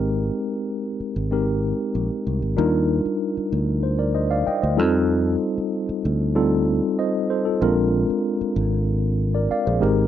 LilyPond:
<<
  \new Staff \with { instrumentName = "Tine electric piano" } { \time 4/4 \key ees \major \tempo 4 = 95 << { r1 | r2 c''16 <bes' d''>16 <c'' ees''>16 <d'' f''>16 <ees'' g''>16 <c'' ees''>8 r16 | r2. <c'' ees''>8 <a' c''>16 <f' a'>16~ | <f' a'>16 r2 r8 <bes' d''>16 <d'' f''>16 <aes' c''>8 r16 | } \\ { <aes c' ees' g' bes'>4. r8 <aes c' ees' g' bes'>2 | <g d' ees' f' bes'>2 r4. <g c' ees' f' a'>8~ | <g c' ees' f' a'>4. r8 <g c' ees' f' a'>2 | <aes c' d' f' bes'>2 r4. <aes c' ees' g' bes'>8 | } >> }
  \new Staff \with { instrumentName = "Fingered electric bass" } { \clef bass \time 4/4 \key ees \major aes,,8 r4 r16 aes,,4 r16 bes,,16 r16 c,16 aes,,16 | ees,8. r8. d,4. r16 d,16 f,8~ | f,8 r4 d,4~ d,16 r4 r16 | bes,,8. r8. aes,,4. r16 bes,,16 aes,,8 | }
>>